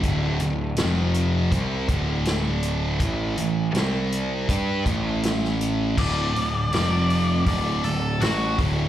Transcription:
<<
  \new Staff \with { instrumentName = "Lead electric guitar" } { \time 4/4 \key a \dorian \tempo 4 = 81 r1 | r1 | d''2 d''8 a'8 fis'8 r8 | }
  \new Staff \with { instrumentName = "Distorted electric guitar" } { \clef bass \time 4/4 \key a \dorian <d, a, d>8 <d, a,>8 <f, c f>4 <c g c'>8 <d, a, d>4. | <a, e a>8 <a, e>8 <c g c'>4 <g d' g'>8 <a, e a>4. | <d, a, d>8 <d, a,>8 <f, c f>4 <d, a, d>8 <d, a,>8 <a, e a>8 <d, a, d>8 | }
  \new Staff \with { instrumentName = "Picked electric bass" } { \clef bass \time 4/4 \key a \dorian d,,8 d,,8 f,,4 c,8 d,,4. | a,,8 a,,8 c,4 g,8 a,,4. | d,,8 d,,8 f,,4 d,,8 d,,8 a,,8 d,,8 | }
  \new DrumStaff \with { instrumentName = "Drums" } \drummode { \time 4/4 <hh bd>8 hh8 <hh sn>8 hh8 <hh bd>8 <hh bd>8 <hh sn>8 hh8 | <hh bd>8 hh8 <hh sn>8 hh8 <hh bd>8 <hh bd>8 <hh sn>16 sn16 hh8 | <cymc bd>8 hho8 <hho sn>8 hho8 <hho bd>8 hho8 <hho sn>8 <hho bd>8 | }
>>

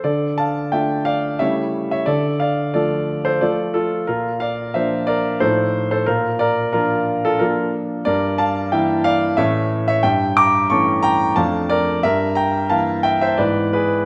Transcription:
<<
  \new Staff \with { instrumentName = "Grand piano" } { \time 3/4 \key d \minor \tempo 4 = 90 <a' d''>8 <f'' a''>8 <e'' g''>8 <d'' f''>8 <cis'' e''>8. <cis'' e''>16 | <a' d''>8 <d'' f''>8 <a' d''>8. <a' c''>16 <a' d''>8 <f' a'>8 | <f' bes'>8 <d'' f''>8 <c'' e''>8 <bes' d''>8 <a' c''>8. <a' c''>16 | <f' bes'>8 <bes' d''>8 <f' bes'>8. <f' a'>16 <f' bes'>8 r8 |
<bes' d''>8 <f'' a''>8 <e'' g''>8 <d'' f''>8 <cis'' e''>8. <cis'' e''>16 | <e'' g''>8 <bes'' d'''>8 <a'' cis'''>8 <g'' bes''>8 <f'' a''>8 <bes' d''>8 | <bes' e''>8 <g'' bes''>8 <f'' a''>8 <e'' g''>16 <c'' e''>16 <b' d''>8 <gis' b'>8 | }
  \new Staff \with { instrumentName = "Grand piano" } { \time 3/4 \key d \minor d4 <a d' f'>4 <cis g a e'>4 | d4 <f a f'>4 <f a f'>4 | bes,4 <f bes d'>4 <a, f ees'>4 | bes,4 <f bes d'>4 <f bes d'>4 |
g,4 <e bes e'>4 <a, e a cis'>4 | g,4 <e a cis'>4 <f, f a d'>4 | g,4 <e bes e'>4 <gis, e b e'>4 | }
>>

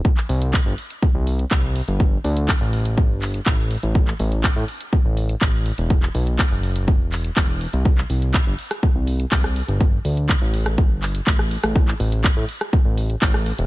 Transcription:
<<
  \new Staff \with { instrumentName = "Analog synth bass" } { \clef bass \time 4/4 \key g \major \tempo 4 = 123 r8 c,8 r16 g,,16 r8. c,8 r16 c,8 r16 g,,16~ | g,,16 r16 d,8 r16 a,,4 g,,8 r16 a,,8 r16 a,,16~ | a,,16 r16 a,,8 r16 a,16 r8. a,,8 r16 a,,8 r16 e,,16~ | e,,16 r16 b,,8 r16 fis,,4 e,,8 r16 e,,8 r16 c,16~ |
c,16 r16 c,8 r16 g,,16 r8. c,8 r16 c,8 r16 g,,16~ | g,,16 r16 d,8 r16 a,,4 g,,8 r16 a,,8 r16 a,,16~ | a,,16 r16 a,,8 r16 a,16 r8. a,,8 r16 a,,8 r16 e,,16 | }
  \new DrumStaff \with { instrumentName = "Drums" } \drummode { \time 4/4 <hh bd>16 hc16 hho16 hh16 <hc hh bd>8 hho16 hh16 <hh bd>8 hho16 hh16 <hc hh bd>8 hho16 hh16 | <hh bd>8 hho16 hh16 <hc hh bd>8 hho16 hh16 <hh bd>8 <hc hho>16 hh16 <hc hh bd>8 hho16 hh16 | <hh bd>16 hc16 hho16 hh16 <hc hh bd>8 hho16 hh16 <hh bd>8 hho16 hh16 <hc hh bd>8 hho16 hh16 | <hh bd>16 hc16 hho16 hh16 <hc hh bd>8 hho16 hh16 <hh bd>8 <hc hho>16 hh16 <hc hh bd>8 hho16 hh16 |
<hh bd>16 hc16 hho16 hh16 <hc hh bd>8 hho16 <hh ss>16 <hh bd>8 hho16 hh16 <hc hh bd>16 ss16 hho16 hh16 | <hh bd>8 hho16 hh16 <hc hh bd>8 hho16 <hh ss>16 <hh bd>8 <hc hho>16 hh16 <hc hh bd>16 ss16 hho16 <hh ss>16 | <hh bd>16 hc16 hho16 hh16 <hc hh bd>8 hho16 <hh ss>16 <hh bd>8 hho16 hh16 <hc hh bd>16 ss16 hho16 hh16 | }
>>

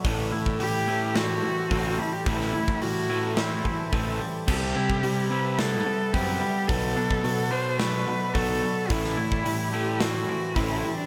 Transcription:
<<
  \new Staff \with { instrumentName = "Ambient pad" } { \time 4/4 \key a \dorian \tempo 4 = 108 << { a''1 | a''1 | e''1 | <d'' b''>1 |
<a'' c'''>1 | } \\ { a'1~ | a'1 | b'1 | a'1~ |
a'1 | } >> }
  \new Staff \with { instrumentName = "Cello" } { \time 4/4 \key a \dorian r4 g'4 fis'4. e'16 g'16 | e'4 fis'4 e'4. r8 | g'4. b'8 a'4 g'4 | a'4. c''8 b'4 a'4 |
e'4. g'8 fis'4 e'8. d'16 | }
  \new Staff \with { instrumentName = "Clean electric guitar" } { \clef bass \time 4/4 \key a \dorian a,8 e'8 g8 e'8 c'8 e8 c'8 g8 | a,8 e'8 g8 e'8 c'8 e8 c'8 g8 | c8 e'8 g8 e'8 b8 c8 b8 g8 | b,8 d'8 fis8 d'8 a8 b,8 a8 fis8 |
a,8 e'8 g8 e'8 c'8 e8 c'8 g8 | }
  \new Staff \with { instrumentName = "Overdriven electric guitar" } { \clef bass \time 4/4 \key a \dorian <a, e a>8 <a, e>8 <a, e>8 <a, e a>8 <a, e>8 <a, e>8 <a, e a>8 <a, e>8 | <a, e a>8 <a, e>8 <a, e>8 <a, e a>8 <a, e>8 <a, e>8 <a, e a>8 <a, e>8 | <c g c'>8 <c g>8 <c g>8 <c g c'>8 <c g>8 <c g>8 <c g c'>8 <c g>8 | <b, fis b>8 <b, fis>8 <b, fis>8 <b, fis b>8 <b, fis>8 <b, fis>8 <b, fis b>8 <b, fis>8 |
<a, e a>8 <a, e>8 <a, e>8 <a, e a>8 <a, e>8 <a, e>8 <a, e a>8 <a, e>8 | }
  \new Staff \with { instrumentName = "Fingered electric bass" } { \clef bass \time 4/4 \key a \dorian a,,8 a,2 r8 a,,8 r8 | a,,8 a,2 r8 a,,8 r8 | c,8 c2 r8 fis,8 r8 | b,,8 b,2 r8 b,,8 r8 |
a,,8 a,2 r8 a,,8 r8 | }
  \new DrumStaff \with { instrumentName = "Drums" } \drummode { \time 4/4 <hho bd>8. bd16 hho4 <hho sn>4 <hho bd>4 | <hho bd>16 sn8 bd16 hho4 <hho sn>8 bd8 <hho bd>4 | <cymc bd>8. bd16 hho4 <hho sn>4 <hho bd>4 | <hho bd>8. bd16 hho4 <hho sn>4 <hho bd>4 |
<hho bd>16 sn8 bd16 hho4 <hho sn>4 <hho bd>4 | }
>>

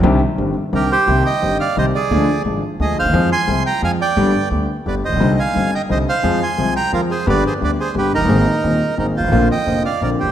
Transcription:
<<
  \new Staff \with { instrumentName = "Bandoneon" } { \time 3/4 \key c \minor \tempo 4 = 174 r2 <g' bes'>8 <g' c''>8~ | <g' c''>8 <ees'' g''>4 <d'' f''>8 <c'' ees''>8 <aes' d''>8~ | <aes' d''>4 r4 <aes' ees''>8 <c'' f''>8~ | <c'' f''>8 <aes'' c'''>4 <g'' bes''>8 <f'' aes''>8 <d'' g''>8~ |
<d'' g''>4 r4 <b' d''>8 <c'' ees''>8~ | <c'' ees''>8 <f'' aes''>4 <ees'' g''>8 <c'' ees''>8 <c'' f''>8~ | <c'' f''>8 <aes'' c'''>4 <g'' bes''>8 <f' bes'>8 <aes' c''>8 | <b' d''>8 <aes' c''>8 <b' d''>8 <aes' c''>8 <g' b'>8 <ees' bes'>8~ |
<ees' bes'>2 <ees' bes'>8 <f' c''>8~ | <f' c''>8 <ees'' g''>4 <d'' f''>8 <bes' d''>8 <g' c''>8 | }
  \new Staff \with { instrumentName = "Grand piano" } { \clef bass \time 3/4 \key c \minor <c, c ees c' d' g'>8 r8 <g,, g, ees c' d' g'>8 r8 <c, c ees c' d' g'>8 r8 | <c, c ees g c' g'>8 r8 <g,, g, ees g c' g'>8 r8 <c, c ees g c' g'>8 r8 | <d, d f aes d' aes'>8 r8 <aes,, aes, f aes d' aes'>8 r8 <d, d f aes d' aes'>8 r32 d,32 ees,32 e,32 | <f, f aes c' aes'>8 r8 <c, c f aes c' aes'>8 r8 <f, f aes c' aes'>8 r8 |
<g,, g, d g b g'>8 r8 <d, d g b g'>8 r8 <g,, g, d g b g'>8 r32 a,,32 bes,,32 b,,32 | <c, c d g c' ees'>8 r8 <g,, g, d g c' ees'>8 r8 <c, c d g c' ees'>8 r8 | <f, f aes c' aes'>8 r8 <c, c f aes c' aes'>8 r8 <f, f aes c' aes'>8 r8 | <g,, g, d g b g'>8 r8 <d, d g b g'>8 r8 <g,, g, d g b g'>8 r32 f,,32 fis,,32 g,,32 |
<aes,, aes, ees bes c' aes'>8 r8 <ees,, ees, ees bes c' aes'>8 r8 <aes,, aes, ees bes c' aes'>8 r32 g,,32 aes,,32 a,,32 | <bes,, bes, d bes c' f'>8 r8 <f,, f, d bes c' f'>8 r8 <bes,, bes, d bes c' f'>8 r32 a,,32 bes,,32 r32 | }
  \new Staff \with { instrumentName = "Upright bass" } { \clef bass \time 3/4 \key c \minor c,16. r8 r32 g,,16. r8 r32 c,16. r8 r32 | c,16. r8 r32 g,,16. r8 r32 c,16. r8 r32 | d,16. r8 r32 aes,,16. r8 r32 d,16. r16 d,32 ees,32 e,32 | f,16. r8 r32 c,16. r8 r32 f,16. r8 r32 |
g,,16. r8 r32 d,16. r8 r32 g,,16. r16 a,,32 bes,,32 b,,32 | c,16. r8 r32 g,,16. r8 r32 c,16. r8 r32 | f,16. r8 r32 c,16. r8 r32 f,16. r8 r32 | g,,16. r8 r32 d,16. r8 r32 g,,16. r16 f,,32 fis,,32 g,,32 |
aes,,16. r8 r32 ees,16. r8 r32 aes,,16. r16 g,,32 aes,,32 a,,32 | bes,,16. r8 r32 f,,16. r8 r32 bes,,16. r16 a,,32 bes,,32 r32 | }
>>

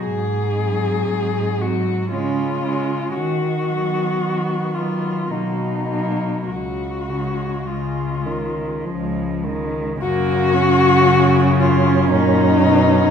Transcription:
<<
  \new Staff \with { instrumentName = "Cello" } { \time 3/4 \key fis \major \tempo 4 = 57 gis'4. fis'8 eis'4 | fis'4. eis'8 dis'4 | fis'4 eis'4 r4 | fis'4. eis'8 dis'4 | }
  \new Staff \with { instrumentName = "Cello" } { \time 3/4 \key fis \major r8 bis4 bis8 cis'8 cis'8 | r8 b4 b8 ais8 ais8 | r8 gis4 gis4 gis8 | ais8 cis'2~ cis'8 | }
  \new Staff \with { instrumentName = "Cello" } { \clef bass \time 3/4 \key fis \major r8 fis4 fis8 gis8 gis8 | r8 fis4 fis8 fis8 fis8 | r8 cis8 cis8 dis8 eis8 dis8 | cis2 ais,8 b,8 | }
  \new Staff \with { instrumentName = "Cello" } { \clef bass \time 3/4 \key fis \major gis,4 gis,4 cis4 | dis4 dis4 b,4 | cis,4 cis,4 cis,4 | fis,2. | }
>>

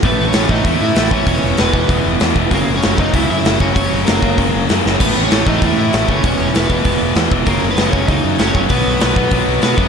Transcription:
<<
  \new Staff \with { instrumentName = "Overdriven electric guitar" } { \time 4/4 \key a \lydian \tempo 4 = 194 <b b'>8. <cis' cis''>8. <dis' dis''>8 <e' e''>8 <e' e''>4 <cis' cis''>8 | <cis' cis''>4 <b b'>2 r4 | <ais ais'>8. <cis' cis''>8. <dis' dis''>8 <e' e''>8 <e' e''>4 <cis' cis''>8 | <cis' cis''>4 <ais ais'>2 r4 |
<b b'>8. <cis' cis''>8. <dis' dis''>8 <e' e''>8 <e' e''>4 <cis' cis''>8 | <cis' cis''>4 <b b'>2 r4 | <ais ais'>8. <b b'>8. <cis' cis''>8 <dis' dis''>4 <cis' cis''>8 <cis' cis''>8 | <b b'>2. <b b'>4 | }
  \new Staff \with { instrumentName = "Distorted electric guitar" } { \clef bass \time 4/4 \key a \lydian <a, e a>4 <a, e a>8 <a, e a>8 <a, e a>4 <a, e a>8 <a, e a>8 | <e, b, e>4 <e, b, e>8 <e, b, e>8 <e, b, e>4 <e, b, e>8 <e, b, e>8 | <fis, cis fis>4 <fis, cis fis>8 <fis, cis fis>8 <fis, cis fis>4 <fis, cis fis>8 <fis, cis fis>8 | <fis, cis fis>4 <fis, cis fis>8 <fis, cis fis>8 <fis, cis fis>4 <fis, cis fis>8 <fis, cis fis>8 |
<a, e a>4 <a, e a>8 <a, e a>8 <a, e a>4 <a, e a>8 <a, e a>8 | <e, b, e>4 <e, b, e>8 <e, b, e>8 <e, b, e>4 <e, b, e>8 <e, b, e>8 | <fis, cis fis>4 <fis, cis fis>8 <fis, cis fis>8 <fis, cis fis>4 <fis, cis fis>8 <fis, cis fis>8 | <b, fis b>4 <b, fis b>8 <b, fis b>8 <b, fis b>4 <b, fis b>8 <b, fis b>8 | }
  \new Staff \with { instrumentName = "Distorted electric guitar" } { \clef bass \time 4/4 \key a \lydian <a, e a>4 <a, e a>8 <a, e a>8 <a, e a>4 <a, e a>8 <a, e a>8 | <e, b, e>4 <e, b, e>8 <e, b, e>8 <e, b, e>4 <e, b, e>8 <e, b, e>8 | <fis, cis fis>4 <fis, cis fis>8 <fis, cis fis>8 <fis, cis fis>4 <fis, cis fis>8 <fis, cis fis>8 | <fis, cis fis>4 <fis, cis fis>8 <fis, cis fis>8 <fis, cis fis>4 <fis, cis fis>8 <fis, cis fis>8 |
<a, e a>4 <a, e a>8 <a, e a>8 <a, e a>4 <a, e a>8 <a, e a>8 | <e, b, e>4 <e, b, e>8 <e, b, e>8 <e, b, e>4 <e, b, e>8 <e, b, e>8 | <fis, cis fis>4 <fis, cis fis>8 <fis, cis fis>8 <fis, cis fis>4 <fis, cis fis>8 <fis, cis fis>8 | <b, fis b>4 <b, fis b>8 <b, fis b>8 <b, fis b>4 <b, fis b>8 <b, fis b>8 | }
  \new Staff \with { instrumentName = "Picked electric bass" } { \clef bass \time 4/4 \key a \lydian a,,8 a,,8 a,,8 a,,8 e,8 a,8 a,,8 a,,8 | e,,8 e,,8 e,,8 e,,8 e,,8 e,,8 e,8 e,,8 | fis,,8 fis,,8 fis,,8 fis,,8 cis,8 fis,8 fis,,8 fis,,8 | fis,,8 fis,,8 fis,,8 fis,,8 fis,,8 fis,,8 fis,8 fis,,8 |
a,,8 a,,8 a,,8 a,,8 e,8 a,8 a,,8 fis,,8 | e,,8 e,,8 e,,8 e,,8 e,,8 e,,8 e,8 e,,8 | fis,,8 fis,,8 fis,,8 fis,,8 cis,8 fis,8 fis,,8 fis,,8 | b,,8 b,,8 b,,8 b,,8 b,,8 b,,8 b,8 fis,8 | }
  \new DrumStaff \with { instrumentName = "Drums" } \drummode { \time 4/4 <hho bd>4 <hho sn>8 bd8 <hho bd>4 <hho sn>8 bd8 | <hho bd>4 <hho sn>8 bd8 <hho bd>4 <hho sn>8 bd8 | <hho bd>4 <hho sn>8 bd8 <hho bd>4 <hho sn>8 bd8 | <hho bd>4 <hho sn>8 bd8 <hho bd>4 <hho sn>8 sn8 |
<cymc bd>4 <hho sn>8 bd8 <hho bd>4 <hho sn>8 bd8 | <hho bd>4 <hho sn>8 bd8 <hho bd>4 <hho sn>8 bd8 | <hho bd>4 <hho sn>8 bd8 <hho bd>4 <hho sn>8 bd8 | <hho bd>4 <hho sn>8 bd8 <hho bd>4 <hho sn>8 bd8 | }
>>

